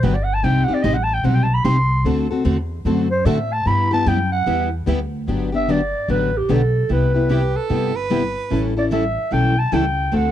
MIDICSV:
0, 0, Header, 1, 6, 480
1, 0, Start_track
1, 0, Key_signature, 1, "major"
1, 0, Tempo, 404040
1, 518, Time_signature, 4, 2, 24, 8
1, 12254, End_track
2, 0, Start_track
2, 0, Title_t, "Clarinet"
2, 0, Program_c, 0, 71
2, 44, Note_on_c, 0, 71, 76
2, 170, Note_on_c, 0, 74, 78
2, 188, Note_off_c, 0, 71, 0
2, 278, Note_on_c, 0, 78, 98
2, 295, Note_off_c, 0, 74, 0
2, 399, Note_on_c, 0, 81, 101
2, 417, Note_off_c, 0, 78, 0
2, 521, Note_on_c, 0, 79, 89
2, 538, Note_off_c, 0, 81, 0
2, 762, Note_on_c, 0, 78, 104
2, 780, Note_off_c, 0, 79, 0
2, 879, Note_on_c, 0, 74, 85
2, 897, Note_off_c, 0, 78, 0
2, 983, Note_on_c, 0, 75, 89
2, 1001, Note_off_c, 0, 74, 0
2, 1115, Note_on_c, 0, 78, 83
2, 1133, Note_off_c, 0, 75, 0
2, 1229, Note_on_c, 0, 81, 116
2, 1246, Note_off_c, 0, 78, 0
2, 1347, Note_on_c, 0, 79, 88
2, 1365, Note_off_c, 0, 81, 0
2, 1485, Note_on_c, 0, 78, 86
2, 1503, Note_off_c, 0, 79, 0
2, 1598, Note_on_c, 0, 79, 91
2, 1616, Note_off_c, 0, 78, 0
2, 1700, Note_on_c, 0, 81, 94
2, 1718, Note_off_c, 0, 79, 0
2, 1831, Note_on_c, 0, 83, 86
2, 1849, Note_off_c, 0, 81, 0
2, 1949, Note_on_c, 0, 84, 91
2, 1967, Note_off_c, 0, 83, 0
2, 2432, Note_off_c, 0, 84, 0
2, 3696, Note_on_c, 0, 72, 84
2, 3866, Note_on_c, 0, 76, 88
2, 3884, Note_off_c, 0, 72, 0
2, 4187, Note_on_c, 0, 81, 100
2, 4205, Note_off_c, 0, 76, 0
2, 4362, Note_on_c, 0, 83, 106
2, 4380, Note_off_c, 0, 81, 0
2, 4659, Note_off_c, 0, 83, 0
2, 4669, Note_on_c, 0, 81, 109
2, 4846, Note_on_c, 0, 79, 96
2, 4863, Note_off_c, 0, 81, 0
2, 5125, Note_off_c, 0, 79, 0
2, 5133, Note_on_c, 0, 78, 103
2, 5578, Note_off_c, 0, 78, 0
2, 6600, Note_on_c, 0, 76, 91
2, 6780, Note_on_c, 0, 74, 90
2, 6798, Note_off_c, 0, 76, 0
2, 7245, Note_off_c, 0, 74, 0
2, 7251, Note_on_c, 0, 71, 88
2, 7569, Note_on_c, 0, 67, 76
2, 7587, Note_off_c, 0, 71, 0
2, 7740, Note_on_c, 0, 69, 80
2, 7758, Note_off_c, 0, 67, 0
2, 8206, Note_off_c, 0, 69, 0
2, 8223, Note_on_c, 0, 71, 81
2, 9121, Note_off_c, 0, 71, 0
2, 10434, Note_on_c, 0, 74, 78
2, 10510, Note_off_c, 0, 74, 0
2, 10603, Note_on_c, 0, 76, 88
2, 11075, Note_on_c, 0, 79, 98
2, 11093, Note_off_c, 0, 76, 0
2, 11386, Note_on_c, 0, 81, 91
2, 11404, Note_off_c, 0, 79, 0
2, 11564, Note_on_c, 0, 79, 87
2, 11582, Note_off_c, 0, 81, 0
2, 12041, Note_off_c, 0, 79, 0
2, 12065, Note_on_c, 0, 78, 82
2, 12254, Note_off_c, 0, 78, 0
2, 12254, End_track
3, 0, Start_track
3, 0, Title_t, "Soprano saxophone"
3, 0, Program_c, 1, 64
3, 8685, Note_on_c, 1, 67, 73
3, 8985, Note_on_c, 1, 69, 86
3, 9003, Note_off_c, 1, 67, 0
3, 9454, Note_on_c, 1, 71, 98
3, 9471, Note_off_c, 1, 69, 0
3, 10265, Note_off_c, 1, 71, 0
3, 12254, End_track
4, 0, Start_track
4, 0, Title_t, "Steel-string acoustic guitar"
4, 0, Program_c, 2, 25
4, 36, Note_on_c, 2, 50, 78
4, 43, Note_on_c, 2, 54, 87
4, 43, Note_on_c, 2, 59, 85
4, 47, Note_on_c, 2, 62, 84
4, 52, Note_on_c, 2, 67, 91
4, 172, Note_off_c, 2, 50, 0
4, 175, Note_off_c, 2, 54, 0
4, 175, Note_off_c, 2, 59, 0
4, 177, Note_off_c, 2, 62, 0
4, 179, Note_off_c, 2, 67, 0
4, 514, Note_on_c, 2, 48, 66
4, 514, Note_on_c, 2, 55, 70
4, 520, Note_on_c, 2, 60, 71
4, 522, Note_on_c, 2, 63, 66
4, 525, Note_on_c, 2, 67, 65
4, 769, Note_off_c, 2, 48, 0
4, 769, Note_off_c, 2, 55, 0
4, 773, Note_off_c, 2, 60, 0
4, 773, Note_off_c, 2, 63, 0
4, 775, Note_off_c, 2, 67, 0
4, 809, Note_on_c, 2, 67, 62
4, 822, Note_on_c, 2, 63, 57
4, 834, Note_on_c, 2, 60, 47
4, 985, Note_off_c, 2, 67, 0
4, 986, Note_off_c, 2, 60, 0
4, 986, Note_off_c, 2, 63, 0
4, 994, Note_on_c, 2, 48, 82
4, 997, Note_on_c, 2, 55, 88
4, 1000, Note_on_c, 2, 63, 87
4, 1001, Note_on_c, 2, 60, 83
4, 1006, Note_on_c, 2, 67, 97
4, 1130, Note_off_c, 2, 48, 0
4, 1132, Note_off_c, 2, 55, 0
4, 1133, Note_off_c, 2, 60, 0
4, 1133, Note_off_c, 2, 63, 0
4, 1136, Note_off_c, 2, 67, 0
4, 1472, Note_on_c, 2, 48, 68
4, 1473, Note_on_c, 2, 55, 72
4, 1480, Note_on_c, 2, 60, 61
4, 1485, Note_on_c, 2, 63, 66
4, 1486, Note_on_c, 2, 67, 76
4, 1728, Note_off_c, 2, 48, 0
4, 1728, Note_off_c, 2, 55, 0
4, 1732, Note_off_c, 2, 60, 0
4, 1735, Note_off_c, 2, 63, 0
4, 1735, Note_off_c, 2, 67, 0
4, 1952, Note_on_c, 2, 48, 87
4, 1956, Note_on_c, 2, 55, 80
4, 1963, Note_on_c, 2, 60, 84
4, 1964, Note_on_c, 2, 63, 97
4, 1968, Note_on_c, 2, 67, 86
4, 2089, Note_off_c, 2, 48, 0
4, 2091, Note_off_c, 2, 55, 0
4, 2094, Note_off_c, 2, 60, 0
4, 2094, Note_off_c, 2, 63, 0
4, 2096, Note_off_c, 2, 67, 0
4, 2434, Note_on_c, 2, 50, 68
4, 2439, Note_on_c, 2, 57, 68
4, 2443, Note_on_c, 2, 60, 70
4, 2443, Note_on_c, 2, 66, 68
4, 2447, Note_on_c, 2, 69, 78
4, 2688, Note_off_c, 2, 50, 0
4, 2690, Note_off_c, 2, 57, 0
4, 2692, Note_off_c, 2, 60, 0
4, 2692, Note_off_c, 2, 66, 0
4, 2695, Note_off_c, 2, 69, 0
4, 2740, Note_on_c, 2, 69, 57
4, 2753, Note_on_c, 2, 66, 54
4, 2764, Note_on_c, 2, 60, 48
4, 2895, Note_off_c, 2, 66, 0
4, 2896, Note_off_c, 2, 60, 0
4, 2901, Note_on_c, 2, 50, 82
4, 2904, Note_off_c, 2, 69, 0
4, 2904, Note_on_c, 2, 57, 81
4, 2909, Note_on_c, 2, 66, 86
4, 2910, Note_on_c, 2, 60, 78
4, 2918, Note_on_c, 2, 69, 92
4, 3042, Note_off_c, 2, 50, 0
4, 3044, Note_off_c, 2, 57, 0
4, 3046, Note_off_c, 2, 66, 0
4, 3047, Note_off_c, 2, 60, 0
4, 3050, Note_off_c, 2, 69, 0
4, 3393, Note_on_c, 2, 50, 70
4, 3396, Note_on_c, 2, 57, 67
4, 3400, Note_on_c, 2, 60, 62
4, 3408, Note_on_c, 2, 66, 73
4, 3409, Note_on_c, 2, 69, 72
4, 3646, Note_off_c, 2, 50, 0
4, 3648, Note_off_c, 2, 57, 0
4, 3650, Note_off_c, 2, 60, 0
4, 3654, Note_off_c, 2, 66, 0
4, 3654, Note_off_c, 2, 69, 0
4, 3864, Note_on_c, 2, 50, 92
4, 3866, Note_on_c, 2, 57, 86
4, 3874, Note_on_c, 2, 60, 89
4, 3876, Note_on_c, 2, 66, 101
4, 3878, Note_on_c, 2, 69, 110
4, 4002, Note_off_c, 2, 50, 0
4, 4003, Note_off_c, 2, 57, 0
4, 4007, Note_off_c, 2, 60, 0
4, 4009, Note_off_c, 2, 66, 0
4, 4009, Note_off_c, 2, 69, 0
4, 4346, Note_on_c, 2, 55, 63
4, 4347, Note_on_c, 2, 59, 67
4, 4355, Note_on_c, 2, 64, 75
4, 4360, Note_on_c, 2, 67, 67
4, 4602, Note_off_c, 2, 55, 0
4, 4602, Note_off_c, 2, 59, 0
4, 4606, Note_off_c, 2, 64, 0
4, 4609, Note_off_c, 2, 67, 0
4, 4645, Note_on_c, 2, 67, 63
4, 4662, Note_on_c, 2, 64, 50
4, 4678, Note_on_c, 2, 59, 51
4, 4816, Note_off_c, 2, 59, 0
4, 4819, Note_off_c, 2, 64, 0
4, 4820, Note_off_c, 2, 67, 0
4, 4825, Note_on_c, 2, 55, 84
4, 4830, Note_on_c, 2, 59, 90
4, 4833, Note_on_c, 2, 64, 88
4, 4837, Note_on_c, 2, 67, 101
4, 4962, Note_off_c, 2, 55, 0
4, 4965, Note_off_c, 2, 59, 0
4, 4966, Note_off_c, 2, 64, 0
4, 4968, Note_off_c, 2, 67, 0
4, 5306, Note_on_c, 2, 55, 72
4, 5310, Note_on_c, 2, 59, 69
4, 5317, Note_on_c, 2, 64, 71
4, 5317, Note_on_c, 2, 67, 75
4, 5561, Note_off_c, 2, 55, 0
4, 5563, Note_off_c, 2, 59, 0
4, 5566, Note_off_c, 2, 67, 0
4, 5567, Note_off_c, 2, 64, 0
4, 5777, Note_on_c, 2, 55, 82
4, 5784, Note_on_c, 2, 59, 89
4, 5789, Note_on_c, 2, 64, 91
4, 5794, Note_on_c, 2, 67, 96
4, 5917, Note_off_c, 2, 55, 0
4, 5921, Note_off_c, 2, 59, 0
4, 5923, Note_off_c, 2, 64, 0
4, 5926, Note_off_c, 2, 67, 0
4, 6261, Note_on_c, 2, 50, 56
4, 6269, Note_on_c, 2, 54, 64
4, 6274, Note_on_c, 2, 59, 68
4, 6277, Note_on_c, 2, 67, 64
4, 6278, Note_on_c, 2, 62, 60
4, 6519, Note_off_c, 2, 50, 0
4, 6523, Note_off_c, 2, 54, 0
4, 6525, Note_off_c, 2, 59, 0
4, 6526, Note_off_c, 2, 67, 0
4, 6527, Note_off_c, 2, 62, 0
4, 6562, Note_on_c, 2, 67, 50
4, 6580, Note_on_c, 2, 62, 48
4, 6587, Note_on_c, 2, 59, 45
4, 6738, Note_off_c, 2, 67, 0
4, 6745, Note_off_c, 2, 59, 0
4, 6746, Note_off_c, 2, 62, 0
4, 6751, Note_on_c, 2, 50, 75
4, 6752, Note_on_c, 2, 54, 76
4, 6759, Note_on_c, 2, 59, 75
4, 6763, Note_on_c, 2, 62, 80
4, 6767, Note_on_c, 2, 67, 78
4, 6884, Note_off_c, 2, 50, 0
4, 6885, Note_off_c, 2, 54, 0
4, 6889, Note_off_c, 2, 59, 0
4, 6890, Note_off_c, 2, 62, 0
4, 6892, Note_off_c, 2, 67, 0
4, 7227, Note_on_c, 2, 50, 63
4, 7229, Note_on_c, 2, 54, 65
4, 7239, Note_on_c, 2, 59, 61
4, 7241, Note_on_c, 2, 62, 64
4, 7242, Note_on_c, 2, 67, 61
4, 7482, Note_off_c, 2, 50, 0
4, 7483, Note_off_c, 2, 54, 0
4, 7488, Note_off_c, 2, 59, 0
4, 7489, Note_off_c, 2, 62, 0
4, 7489, Note_off_c, 2, 67, 0
4, 7708, Note_on_c, 2, 50, 70
4, 7715, Note_on_c, 2, 54, 83
4, 7717, Note_on_c, 2, 59, 86
4, 7723, Note_on_c, 2, 62, 78
4, 7724, Note_on_c, 2, 67, 87
4, 7843, Note_off_c, 2, 50, 0
4, 7847, Note_off_c, 2, 54, 0
4, 7848, Note_off_c, 2, 59, 0
4, 7851, Note_off_c, 2, 62, 0
4, 7851, Note_off_c, 2, 67, 0
4, 8195, Note_on_c, 2, 48, 58
4, 8202, Note_on_c, 2, 55, 63
4, 8205, Note_on_c, 2, 59, 59
4, 8205, Note_on_c, 2, 64, 61
4, 8208, Note_on_c, 2, 67, 66
4, 8446, Note_off_c, 2, 48, 0
4, 8450, Note_off_c, 2, 55, 0
4, 8451, Note_off_c, 2, 64, 0
4, 8452, Note_off_c, 2, 59, 0
4, 8453, Note_off_c, 2, 67, 0
4, 8487, Note_on_c, 2, 67, 57
4, 8501, Note_on_c, 2, 64, 50
4, 8513, Note_on_c, 2, 59, 48
4, 8658, Note_off_c, 2, 59, 0
4, 8661, Note_off_c, 2, 67, 0
4, 8665, Note_off_c, 2, 64, 0
4, 8665, Note_on_c, 2, 48, 82
4, 8670, Note_on_c, 2, 55, 80
4, 8672, Note_on_c, 2, 59, 79
4, 8680, Note_on_c, 2, 64, 85
4, 8684, Note_on_c, 2, 67, 88
4, 8802, Note_off_c, 2, 48, 0
4, 8805, Note_off_c, 2, 55, 0
4, 8806, Note_off_c, 2, 59, 0
4, 8810, Note_off_c, 2, 64, 0
4, 8812, Note_off_c, 2, 67, 0
4, 9143, Note_on_c, 2, 48, 59
4, 9147, Note_on_c, 2, 55, 59
4, 9152, Note_on_c, 2, 59, 65
4, 9155, Note_on_c, 2, 67, 67
4, 9156, Note_on_c, 2, 64, 59
4, 9401, Note_off_c, 2, 48, 0
4, 9403, Note_off_c, 2, 55, 0
4, 9406, Note_off_c, 2, 59, 0
4, 9408, Note_off_c, 2, 64, 0
4, 9408, Note_off_c, 2, 67, 0
4, 9629, Note_on_c, 2, 48, 80
4, 9631, Note_on_c, 2, 55, 83
4, 9638, Note_on_c, 2, 59, 81
4, 9639, Note_on_c, 2, 64, 84
4, 9639, Note_on_c, 2, 67, 81
4, 9765, Note_off_c, 2, 48, 0
4, 9766, Note_off_c, 2, 55, 0
4, 9770, Note_off_c, 2, 59, 0
4, 9770, Note_off_c, 2, 64, 0
4, 9770, Note_off_c, 2, 67, 0
4, 10109, Note_on_c, 2, 52, 65
4, 10119, Note_on_c, 2, 55, 63
4, 10121, Note_on_c, 2, 61, 63
4, 10124, Note_on_c, 2, 64, 66
4, 10129, Note_on_c, 2, 69, 69
4, 10365, Note_off_c, 2, 52, 0
4, 10370, Note_off_c, 2, 55, 0
4, 10371, Note_off_c, 2, 61, 0
4, 10373, Note_off_c, 2, 64, 0
4, 10375, Note_off_c, 2, 69, 0
4, 10415, Note_on_c, 2, 69, 60
4, 10424, Note_on_c, 2, 64, 55
4, 10435, Note_on_c, 2, 61, 45
4, 10586, Note_off_c, 2, 61, 0
4, 10587, Note_off_c, 2, 69, 0
4, 10589, Note_off_c, 2, 64, 0
4, 10592, Note_on_c, 2, 52, 72
4, 10600, Note_on_c, 2, 61, 92
4, 10601, Note_on_c, 2, 55, 84
4, 10603, Note_on_c, 2, 64, 77
4, 10609, Note_on_c, 2, 69, 84
4, 10728, Note_off_c, 2, 52, 0
4, 10732, Note_off_c, 2, 55, 0
4, 10732, Note_off_c, 2, 61, 0
4, 10733, Note_off_c, 2, 64, 0
4, 10736, Note_off_c, 2, 69, 0
4, 11080, Note_on_c, 2, 52, 59
4, 11080, Note_on_c, 2, 55, 61
4, 11089, Note_on_c, 2, 61, 60
4, 11094, Note_on_c, 2, 64, 65
4, 11095, Note_on_c, 2, 69, 69
4, 11331, Note_off_c, 2, 52, 0
4, 11332, Note_off_c, 2, 55, 0
4, 11336, Note_off_c, 2, 61, 0
4, 11338, Note_off_c, 2, 64, 0
4, 11339, Note_off_c, 2, 69, 0
4, 11557, Note_on_c, 2, 52, 77
4, 11559, Note_on_c, 2, 55, 84
4, 11561, Note_on_c, 2, 61, 84
4, 11567, Note_on_c, 2, 64, 92
4, 11572, Note_on_c, 2, 69, 91
4, 11691, Note_off_c, 2, 52, 0
4, 11692, Note_off_c, 2, 55, 0
4, 11693, Note_off_c, 2, 61, 0
4, 11696, Note_off_c, 2, 64, 0
4, 11698, Note_off_c, 2, 69, 0
4, 12033, Note_on_c, 2, 50, 65
4, 12036, Note_on_c, 2, 57, 64
4, 12038, Note_on_c, 2, 60, 66
4, 12043, Note_on_c, 2, 66, 69
4, 12047, Note_on_c, 2, 69, 67
4, 12254, Note_off_c, 2, 50, 0
4, 12254, Note_off_c, 2, 57, 0
4, 12254, Note_off_c, 2, 60, 0
4, 12254, Note_off_c, 2, 66, 0
4, 12254, Note_off_c, 2, 69, 0
4, 12254, End_track
5, 0, Start_track
5, 0, Title_t, "Upright bass"
5, 0, Program_c, 3, 32
5, 42, Note_on_c, 3, 31, 87
5, 506, Note_off_c, 3, 31, 0
5, 522, Note_on_c, 3, 36, 75
5, 801, Note_off_c, 3, 36, 0
5, 997, Note_on_c, 3, 33, 93
5, 1463, Note_off_c, 3, 33, 0
5, 1473, Note_on_c, 3, 35, 81
5, 1940, Note_off_c, 3, 35, 0
5, 1954, Note_on_c, 3, 36, 86
5, 2420, Note_off_c, 3, 36, 0
5, 2429, Note_on_c, 3, 38, 81
5, 2897, Note_off_c, 3, 38, 0
5, 2913, Note_on_c, 3, 40, 91
5, 3379, Note_off_c, 3, 40, 0
5, 3385, Note_on_c, 3, 42, 89
5, 3854, Note_off_c, 3, 42, 0
5, 3866, Note_on_c, 3, 45, 100
5, 4334, Note_off_c, 3, 45, 0
5, 4345, Note_on_c, 3, 43, 86
5, 4813, Note_off_c, 3, 43, 0
5, 4826, Note_on_c, 3, 42, 94
5, 5293, Note_off_c, 3, 42, 0
5, 5304, Note_on_c, 3, 40, 82
5, 5772, Note_off_c, 3, 40, 0
5, 5785, Note_on_c, 3, 38, 93
5, 6252, Note_off_c, 3, 38, 0
5, 6269, Note_on_c, 3, 31, 78
5, 7037, Note_off_c, 3, 31, 0
5, 7228, Note_on_c, 3, 33, 72
5, 7637, Note_off_c, 3, 33, 0
5, 7710, Note_on_c, 3, 35, 76
5, 8119, Note_off_c, 3, 35, 0
5, 8194, Note_on_c, 3, 36, 80
5, 8962, Note_off_c, 3, 36, 0
5, 9146, Note_on_c, 3, 31, 76
5, 9918, Note_off_c, 3, 31, 0
5, 10111, Note_on_c, 3, 33, 87
5, 10881, Note_off_c, 3, 33, 0
5, 11075, Note_on_c, 3, 35, 70
5, 11484, Note_off_c, 3, 35, 0
5, 11550, Note_on_c, 3, 37, 83
5, 11961, Note_off_c, 3, 37, 0
5, 12031, Note_on_c, 3, 38, 80
5, 12254, Note_off_c, 3, 38, 0
5, 12254, End_track
6, 0, Start_track
6, 0, Title_t, "Muted upright bass strokes"
6, 819, Note_on_c, 9, 29, 38
6, 938, Note_off_c, 9, 29, 0
6, 12254, End_track
0, 0, End_of_file